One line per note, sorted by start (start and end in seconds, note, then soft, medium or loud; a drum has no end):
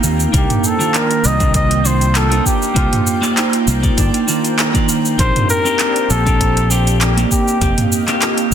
0.00 0.25 D#2 medium
0.00 0.30 A#3 medium
0.00 0.34 A#3 medium
0.00 0.30 C4 medium
0.00 0.30 D#4 medium
0.00 1.01 D#4 loud
0.00 0.31 F4 medium
0.00 2.26 F4 medium
0.00 0.27 G4 loud
0.00 0.30 G4 medium
0.00 0.31 F5 medium
0.00 7.27 G5 medium
0.00 cabasa medium
0.20 cabasa soft
0.32 0.45 C2 loud
0.32 0.76 A#3 medium
0.32 1.25 A#3 medium
0.32 0.76 D4 medium
0.32 0.77 D#4 medium
0.32 5.15 F4 medium
0.32 0.77 F4 medium
0.32 5.15 C5 medium
0.32 kick loud
0.32 closed hi-hat medium
0.32 cabasa soft
0.37 0.68 G4 medium
0.50 closed hi-hat soft
0.50 mid tom medium
0.50 cabasa soft
0.64 0.97 A4 loud
0.64 cabasa medium
0.79 1.37 D#3 medium
0.79 1.36 A#3 medium
0.79 1.37 D4 medium
0.79 1.37 F4 loud
0.79 cabasa soft
0.94 3.43 D4 medium
0.94 1.28 A#4 loud
0.94 clap medium
0.94 closed hi-hat medium
0.94 cabasa soft
1.11 closed hi-hat soft
1.11 cabasa soft
1.24 2.39 C2 medium
1.24 2.15 A#3 medium
1.24 1.56 D#5 loud
1.24 cabasa medium
1.40 1.82 D#3 medium
1.40 1.82 A#3 medium
1.40 1.82 D4 medium
1.40 1.82 F4 medium
1.40 kick loud
1.40 closed hi-hat soft
1.40 cabasa soft
1.54 1.88 D#5 loud
1.54 kick loud
1.54 closed hi-hat medium
1.54 cabasa soft
1.71 closed hi-hat soft
1.71 cabasa soft
1.84 2.28 D#3 medium
1.84 2.27 A#3 medium
1.84 2.28 D4 medium
1.84 2.28 F4 medium
1.84 2.18 C5 loud
1.84 cabasa medium
2.01 closed hi-hat soft
2.01 cabasa soft
2.15 3.67 A#3 medium
2.15 2.48 A4 loud
2.15 clap medium
2.15 closed hi-hat medium
2.15 cabasa soft
2.30 2.72 A#3 medium
2.30 2.72 D4 medium
2.30 2.73 D#4 medium
2.30 2.73 F4 medium
2.30 closed hi-hat soft
2.30 cabasa soft
2.46 3.68 G4 loud
2.46 kick medium
2.46 cabasa medium
2.62 cabasa soft
2.74 2.87 C2 loud
2.74 3.18 A#3 medium
2.74 3.18 D4 medium
2.74 3.19 D#4 medium
2.74 3.19 F4 medium
2.74 5.28 F4 loud
2.74 kick loud
2.74 closed hi-hat medium
2.74 cabasa soft
2.93 closed hi-hat soft
2.93 mid tom medium
2.93 cabasa soft
3.07 cabasa medium
3.21 3.79 A#3 medium
3.21 3.79 D#4 medium
3.21 3.80 F4 loud
3.21 3.79 D5 medium
3.21 clap soft
3.21 cabasa soft
3.37 4.04 D#4 medium
3.37 clap medium
3.37 closed hi-hat medium
3.37 cabasa soft
3.53 closed hi-hat soft
3.53 cabasa soft
3.67 3.89 C2 medium
3.67 4.28 A#3 medium
3.67 cabasa medium
3.82 4.24 A#3 medium
3.82 4.25 D#4 medium
3.82 4.25 F4 medium
3.82 4.24 D5 medium
3.82 kick loud
3.82 closed hi-hat soft
3.82 cabasa soft
3.97 4.09 G1 loud
3.97 4.65 D4 loud
3.97 kick loud
3.97 closed hi-hat medium
3.97 cabasa soft
4.14 closed hi-hat soft
4.14 cabasa soft
4.27 4.71 D#3 medium
4.27 4.70 A#3 medium
4.27 4.89 A#3 medium
4.27 4.71 F4 medium
4.27 4.71 D5 medium
4.27 cabasa medium
4.45 closed hi-hat soft
4.45 cabasa soft
4.59 5.86 D#4 medium
4.59 clap loud
4.59 closed hi-hat medium
4.59 cabasa soft
4.74 5.16 D#3 medium
4.74 5.15 A#3 medium
4.74 5.16 F4 loud
4.74 5.16 D5 medium
4.74 kick medium
4.74 closed hi-hat soft
4.74 cabasa soft
4.89 5.19 A#3 medium
4.89 cabasa medium
5.05 cabasa soft
5.18 5.30 A#1 loud
5.18 6.10 A#3 medium
5.18 5.61 C4 medium
5.18 5.61 D4 medium
5.18 5.62 F4 medium
5.18 8.54 G4 medium
5.18 5.62 G4 medium
5.18 7.29 C5 medium
5.18 5.48 C5 loud
5.18 7.29 D5 medium
5.18 kick loud
5.18 closed hi-hat medium
5.18 cabasa soft
5.36 closed hi-hat soft
5.36 mid tom medium
5.36 cabasa soft
5.50 6.12 A#4 loud
5.50 cabasa medium
5.65 6.22 C4 medium
5.65 6.22 D4 medium
5.65 6.22 F4 medium
5.65 6.23 G4 loud
5.65 cabasa soft
5.79 8.54 D4 medium
5.79 clap medium
5.79 closed hi-hat medium
5.79 cabasa soft
5.96 closed hi-hat soft
5.96 cabasa soft
6.10 7.24 A#1 medium
6.10 7.01 A#3 medium
6.10 6.72 A4 loud
6.10 cabasa medium
6.26 6.67 C4 medium
6.26 6.67 D4 medium
6.26 6.68 F4 medium
6.26 6.68 G4 medium
6.26 kick loud
6.26 closed hi-hat soft
6.26 cabasa soft
6.40 kick loud
6.40 closed hi-hat medium
6.40 cabasa soft
6.57 closed hi-hat soft
6.57 cabasa soft
6.70 7.13 C4 medium
6.70 7.13 D4 medium
6.70 7.13 F4 medium
6.70 7.00 G4 medium
6.70 7.14 G4 medium
6.70 cabasa medium
6.87 closed hi-hat soft
6.87 cabasa soft
7.01 8.52 A#3 medium
7.01 7.20 G4 medium
7.01 clap loud
7.01 closed hi-hat medium
7.01 cabasa soft
7.17 7.58 A#3 loud
7.17 7.58 C4 medium
7.17 7.59 D#4 medium
7.17 7.59 G4 loud
7.17 closed hi-hat soft
7.17 cabasa soft
7.31 7.88 G4 medium
7.31 8.54 D#5 medium
7.31 8.54 F5 medium
7.31 8.54 G5 loud
7.31 kick medium
7.31 cabasa medium
7.48 cabasa soft
7.61 7.72 F1 loud
7.61 8.04 A#3 medium
7.61 8.04 C4 medium
7.61 8.05 D#4 medium
7.61 8.54 G4 loud
7.61 8.05 G4 medium
7.61 kick loud
7.61 closed hi-hat medium
7.61 cabasa soft
7.78 closed hi-hat soft
7.78 mid tom medium
7.78 cabasa soft
7.92 cabasa medium
8.08 8.54 A#3 loud
8.08 8.54 C4 medium
8.08 8.54 D#4 medium
8.08 8.54 G4 loud
8.08 clap soft
8.08 closed hi-hat soft
8.08 cabasa soft
8.22 8.54 F4 medium
8.22 clap loud
8.22 closed hi-hat medium
8.22 cabasa soft
8.38 closed hi-hat soft
8.38 cabasa soft